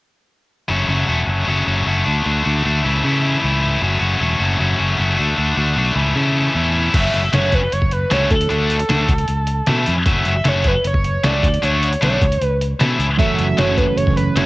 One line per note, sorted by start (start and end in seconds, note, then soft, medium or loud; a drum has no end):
0.68 0.85 F#1 medium
0.68 1.08 F#2 medium
0.68 1.08 C#3 medium
0.68 0.90 F#3 medium
0.68 0.90 A3 medium
0.68 0.88 C#4 medium
0.68 0.87 F#4 medium
0.88 1.05 F#1 medium
0.88 1.06 F#3 soft
0.88 1.08 A3 soft
0.88 1.07 C#4 medium
0.88 1.08 F#4 medium
1.07 1.25 E1 medium
1.07 1.28 F#3 medium
1.07 1.28 A3 medium
1.07 1.26 C#4 medium
1.07 1.25 F#4 medium
1.26 1.44 F#1 medium
1.26 1.47 F#3 soft
1.26 1.48 A3 soft
1.26 1.47 C#4 medium
1.26 1.48 F#4 medium
1.47 1.64 F#1 medium
1.47 1.86 F#2 medium
1.47 1.86 C#3 medium
1.47 1.67 F#3 medium
1.47 1.68 A3 medium
1.47 1.66 C#4 medium
1.47 1.65 F#4 medium
1.66 1.83 F#1 medium
1.66 1.84 F#3 medium
1.66 1.86 A3 soft
1.66 1.86 C#4 medium
1.66 1.87 F#4 medium
1.86 2.03 F#1 medium
1.86 2.04 F#3 medium
1.86 2.05 A3 medium
1.86 2.05 C#4 medium
1.86 2.03 F#4 medium
2.04 2.23 D2 medium
2.04 2.23 D3 medium
2.04 2.25 A3 medium
2.04 2.25 D4 medium
2.04 2.25 F#4 medium
2.24 2.42 D2 medium
2.24 2.63 D3 medium
2.24 2.47 A3 medium
2.24 2.45 D4 medium
2.24 2.43 F#4 medium
2.44 2.62 D2 medium
2.44 2.65 A3 soft
2.44 2.64 D4 soft
2.44 2.65 F#4 medium
2.64 2.81 D2 medium
2.64 2.82 D3 medium
2.64 2.84 A3 medium
2.64 2.83 D4 medium
2.64 2.83 F#4 medium
2.84 3.01 C#2 medium
2.84 3.02 C#3 medium
2.84 3.03 E3 medium
2.84 3.04 A3 medium
2.84 3.04 C#4 medium
2.84 3.05 E4 medium
3.03 3.42 C#3 medium
3.03 3.37 C#3 medium
3.03 3.40 E3 medium
3.03 3.25 A3 medium
3.03 3.23 C#4 medium
3.03 3.21 E4 medium
3.22 3.42 A3 soft
3.22 3.42 C#4 medium
3.22 3.43 E4 medium
3.41 3.76 C#2 medium
3.41 3.80 E3 medium
3.41 3.82 A3 medium
3.41 3.81 C#4 medium
3.41 3.81 E4 medium
3.81 3.98 F#1 medium
3.81 4.20 F#2 medium
3.81 4.20 C#3 medium
3.81 4.02 F#3 medium
3.81 4.02 A3 medium
3.81 4.00 C#4 medium
3.81 3.99 F#4 medium
4.01 4.17 F#1 medium
4.01 4.19 F#3 soft
4.01 4.20 A3 medium
4.01 4.21 C#4 medium
4.01 4.22 F#4 medium
4.20 4.37 E1 medium
4.20 4.41 F#3 medium
4.20 4.41 A3 medium
4.20 4.39 C#4 medium
4.20 4.38 F#4 medium
4.40 4.56 F#1 medium
4.40 4.58 F#3 soft
4.40 4.59 A3 medium
4.40 4.60 C#4 medium
4.40 4.60 F#4 medium
4.59 4.76 F#1 medium
4.59 4.98 F#2 medium
4.59 4.99 C#3 medium
4.59 4.80 F#3 medium
4.59 4.80 A3 medium
4.59 4.78 C#4 medium
4.59 4.77 F#4 medium
4.78 4.96 F#1 medium
4.78 4.96 F#3 soft
4.78 4.98 A3 medium
4.78 4.98 C#4 medium
4.78 4.99 F#4 medium
4.98 5.15 F#1 medium
4.98 5.16 F#3 medium
4.98 5.18 A3 medium
4.98 5.17 C#4 medium
4.98 5.16 F#4 medium
5.17 5.35 D2 medium
5.17 5.35 D3 medium
5.17 5.36 A3 medium
5.17 5.37 D4 medium
5.17 5.38 F#4 medium
5.37 5.54 D2 medium
5.37 5.75 D3 medium
5.37 5.57 A3 medium
5.37 5.56 D4 medium
5.37 5.55 F#4 medium
5.56 5.74 D2 medium
5.56 5.76 A3 soft
5.56 5.77 D4 medium
5.56 5.78 F#4 medium
5.76 5.93 B1 medium
5.76 5.95 D3 medium
5.76 5.95 A3 medium
5.76 5.96 D4 medium
5.76 5.95 F#4 medium
5.96 6.12 C#2 medium
5.96 6.14 C#3 medium
5.96 6.14 E3 medium
5.96 6.15 A3 medium
5.96 6.16 C#4 medium
5.96 6.16 E4 medium
6.15 6.54 C#3 medium
6.15 6.48 C#3 medium
6.15 6.53 E3 medium
6.15 6.37 A3 medium
6.15 6.36 C#4 medium
6.15 6.35 E4 medium
6.36 6.54 A3 medium
6.36 6.54 C#4 medium
6.36 6.55 E4 medium
6.54 6.88 E2 medium
6.54 6.92 E3 medium
6.54 6.93 A3 medium
6.54 6.93 C#4 medium
6.54 6.94 E4 medium
6.94 7.10 F#1 medium
6.94 7.19 F#3 medium
6.94 7.20 A3 medium
6.94 7.20 C#4 medium
6.94 7.20 F#4 medium
6.94 7.13 E5 loud
6.94 kick medium
6.94 closed hi-hat soft
6.94 crash medium
7.14 7.30 F#1 medium
7.14 7.32 E5 medium
7.14 closed hi-hat soft
7.33 7.65 F#1 medium
7.33 7.58 F#3 medium
7.33 7.59 A3 medium
7.33 7.59 C#4 medium
7.33 7.59 F#4 medium
7.33 7.55 C#5 medium
7.33 snare medium
7.33 closed hi-hat medium
7.52 7.74 B4 medium
7.52 kick medium
7.52 closed hi-hat medium
7.72 8.05 F#1 medium
7.72 7.94 C#5 loud
7.72 closed hi-hat medium
7.82 kick medium
7.91 8.14 B4 medium
7.91 closed hi-hat medium
8.11 8.27 C#2 medium
8.11 8.30 F#3 medium
8.11 8.31 A3 medium
8.11 8.31 C#4 medium
8.11 8.31 F#4 medium
8.11 8.31 C#5 medium
8.11 snare medium
8.11 closed hi-hat medium
8.31 8.47 D2 medium
8.31 8.49 A4 medium
8.31 kick medium
8.31 closed hi-hat medium
8.41 closed hi-hat medium
8.49 8.83 D2 medium
8.49 8.75 D3 medium
8.49 8.76 A3 medium
8.49 8.76 D4 medium
8.49 8.76 F#4 medium
8.49 9.84 A4 loud
8.49 closed hi-hat medium
8.70 closed hi-hat medium
8.80 closed hi-hat soft
8.89 9.05 D2 medium
8.89 9.09 D3 medium
8.89 9.09 A3 medium
8.89 9.09 D4 medium
8.89 9.09 F#4 medium
8.89 snare medium
8.89 closed hi-hat soft
9.09 9.25 C#2 medium
9.09 kick medium
9.09 closed hi-hat soft
9.19 closed hi-hat medium
9.28 9.61 C#2 medium
9.28 closed hi-hat soft
9.47 closed hi-hat soft
9.67 9.84 B2 medium
9.67 9.93 E3 medium
9.67 9.93 A3 medium
9.67 9.93 C#4 medium
9.67 9.93 E4 medium
9.67 snare medium
9.67 closed hi-hat soft
9.86 10.03 F2 medium
9.86 closed hi-hat soft
10.06 10.22 F#1 medium
10.06 10.32 F#3 medium
10.06 10.32 A3 medium
10.06 10.32 C#4 medium
10.06 10.32 F#4 medium
10.06 10.25 E5 loud
10.06 kick medium
10.06 closed hi-hat soft
10.25 10.42 F#1 medium
10.25 10.50 E5 medium
10.25 closed hi-hat soft
10.45 10.78 F#1 medium
10.45 10.71 F#3 medium
10.45 10.71 A3 medium
10.45 10.71 C#4 medium
10.45 10.71 F#4 medium
10.45 10.69 C#5 medium
10.45 snare medium
10.45 closed hi-hat soft
10.64 10.86 B4 medium
10.64 kick medium
10.64 closed hi-hat soft
10.84 11.17 F#1 medium
10.84 11.27 C#5 medium
10.84 closed hi-hat medium
10.94 kick medium
11.04 closed hi-hat medium
11.24 11.40 C#2 medium
11.24 11.43 F#3 medium
11.24 11.44 A3 medium
11.24 11.44 C#4 medium
11.24 11.44 F#4 medium
11.24 11.64 D5 medium
11.24 snare medium
11.24 closed hi-hat medium
11.43 11.60 D2 medium
11.43 kick medium
11.43 closed hi-hat medium
11.54 closed hi-hat medium
11.62 11.95 D2 medium
11.62 11.88 D3 medium
11.62 11.88 A3 medium
11.62 11.89 D4 medium
11.62 11.88 F#4 medium
11.62 12.00 C#5 medium
11.62 closed hi-hat medium
11.83 closed hi-hat medium
11.93 closed hi-hat soft
12.01 12.18 B1 medium
12.01 12.21 D3 medium
12.01 12.21 A3 medium
12.01 12.21 D4 medium
12.01 12.21 F#4 medium
12.01 12.45 C#5 medium
12.01 snare medium
12.01 closed hi-hat medium
12.22 12.37 C#2 medium
12.22 kick medium
12.22 closed hi-hat soft
12.32 closed hi-hat medium
12.41 12.73 C#2 medium
12.41 closed hi-hat soft
12.45 12.57 B4 medium
12.61 closed hi-hat soft
12.80 12.96 B2 medium
12.80 13.05 E3 medium
12.80 13.05 A3 medium
12.80 13.05 C#4 medium
12.80 13.05 E4 medium
12.80 snare medium
12.80 closed hi-hat soft
12.99 13.15 C#2 medium
12.99 closed hi-hat soft
13.17 13.35 F#1 medium
13.17 14.46 F#2 medium
13.17 14.46 C#3 medium
13.17 14.46 E3 medium
13.17 13.44 F#3 medium
13.17 13.44 A3 medium
13.17 13.45 C#4 medium
13.17 13.45 F#4 medium
13.17 13.37 E5 loud
13.17 kick medium
13.17 closed hi-hat soft
13.38 13.54 F#1 medium
13.38 13.60 E5 medium
13.38 closed hi-hat soft
13.57 13.90 F#1 medium
13.57 13.83 F#3 medium
13.57 13.83 A3 medium
13.57 13.83 C#4 medium
13.57 13.83 F#4 medium
13.57 13.79 C#5 medium
13.57 snare medium
13.57 closed hi-hat soft
13.77 13.98 B4 medium
13.77 kick medium
13.77 closed hi-hat soft
13.97 14.29 F#1 medium
13.97 14.16 C#5 medium
13.97 closed hi-hat soft
14.07 kick medium
14.07 snare soft
14.16 14.38 B4 medium
14.16 closed hi-hat medium
14.36 14.46 F#1 medium
14.36 14.46 F#3 medium
14.36 14.46 A3 medium
14.36 14.46 C#4 medium
14.36 14.46 F#4 medium
14.36 14.46 C#5 medium
14.36 snare medium
14.36 closed hi-hat medium